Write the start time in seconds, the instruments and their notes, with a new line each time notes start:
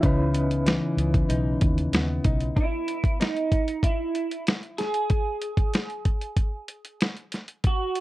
Already playing: nylon-string guitar E3 B3 D#4
0.01 fingered electric bass C#2, nylon-string guitar C#3, synth keys C#4 D#4 E4, kick, closed hi-hat
0.06 synth keys B4
0.33 nylon-string guitar B3, closed hi-hat
0.51 closed hi-hat
0.66 nylon-string guitar E3, snare, closed hi-hat
0.97 fingered electric bass C#2, nylon-string guitar B3, closed hi-hat
1.14 kick, closed hi-hat
1.29 fingered electric bass B1, nylon-string guitar D#4, closed hi-hat
1.61 fingered electric bass D#2, kick, closed hi-hat
1.78 closed hi-hat
1.92 fingered electric bass D#2, nylon-string guitar B3, snare, closed hi-hat
2.24 fingered electric bass B1, nylon-string guitar D#4, kick, closed hi-hat
2.40 closed hi-hat
2.56 clean electric guitar E4, kick, closed hi-hat
2.88 closed hi-hat
3.04 kick, closed hi-hat
3.20 clean electric guitar D#4, snare, closed hi-hat
3.36 closed hi-hat
3.52 kick, closed hi-hat
3.68 closed hi-hat
3.83 clean electric guitar E4, kick, closed hi-hat
4.15 closed hi-hat
4.31 closed hi-hat
4.47 snare, closed hi-hat
4.63 closed hi-hat
4.78 clean electric guitar G#4, snare, closed hi-hat
4.94 closed hi-hat
5.10 kick, closed hi-hat
5.42 closed hi-hat
5.57 kick, closed hi-hat
5.74 snare, closed hi-hat
5.90 closed hi-hat
6.05 kick, closed hi-hat
6.21 closed hi-hat
6.37 kick, closed hi-hat
6.68 closed hi-hat
6.85 closed hi-hat
7.01 snare, closed hi-hat
7.17 closed hi-hat
7.32 snare, closed hi-hat
7.48 closed hi-hat
7.64 clean electric guitar F#4, kick, closed hi-hat
7.95 closed hi-hat